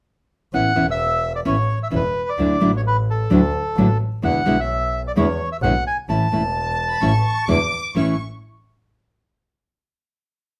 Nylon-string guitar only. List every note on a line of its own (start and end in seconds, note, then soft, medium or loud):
0.54 0.71 E3 medium
0.54 0.71 B3 medium
0.54 0.71 C#4 medium
0.54 0.71 E4 medium
0.76 0.85 E3 medium
0.76 0.85 B3 medium
0.76 0.85 C#4 medium
0.76 0.85 E4 medium
1.45 1.55 E3 medium
1.45 1.55 B3 medium
1.45 1.55 C#4 medium
1.45 1.55 E4 medium
1.90 2.01 E3 medium
1.90 2.01 B3 medium
1.90 2.01 C#4 medium
1.90 2.01 E4 medium
2.38 2.55 D3 soft
2.38 2.55 F#3 medium
2.38 2.56 A3 medium
2.38 2.56 D4 medium
2.38 2.56 E4 medium
2.60 2.70 D3 medium
2.60 2.70 F#3 medium
2.60 2.71 A3 medium
2.60 2.71 D4 medium
2.60 2.71 E4 medium
3.30 3.40 D3 medium
3.30 3.40 F#3 medium
3.30 3.40 A3 medium
3.30 3.40 D4 medium
3.30 3.40 E4 medium
3.78 3.87 D3 medium
3.78 3.87 F#3 medium
3.78 3.87 A3 medium
3.78 3.87 D4 medium
3.78 3.87 E4 medium
4.22 4.40 B2 medium
4.22 4.40 D3 medium
4.22 4.40 G#3 medium
4.22 4.41 B3 medium
4.22 4.41 E4 medium
4.45 4.55 B2 medium
4.45 4.55 D3 medium
4.45 4.55 G#3 medium
4.45 4.56 B3 medium
4.45 4.56 E4 medium
5.16 5.25 B2 medium
5.16 5.25 D3 medium
5.16 5.25 G#3 medium
5.16 5.26 B3 medium
5.16 5.26 E4 medium
5.63 5.72 B2 medium
5.63 5.72 D3 medium
5.63 5.72 G#3 medium
5.63 5.72 B3 medium
5.63 5.73 E4 medium
6.09 6.26 E3 medium
6.09 6.26 A3 medium
6.09 6.26 C#4 medium
6.09 6.26 E4 medium
6.32 6.41 E3 medium
6.32 6.41 A3 medium
6.32 6.42 C#4 medium
6.32 6.42 E4 medium
7.01 7.11 E3 medium
7.01 7.11 A3 medium
7.01 7.11 C#4 medium
7.01 7.11 E4 medium
7.48 7.57 B2 medium
7.48 7.58 D3 medium
7.48 7.58 G#3 medium
7.48 7.58 B3 medium
7.48 7.58 E4 medium
7.95 8.13 A2 medium
7.95 8.14 E3 medium
7.95 8.14 A3 medium
7.95 8.14 C#4 medium
7.95 8.14 E4 medium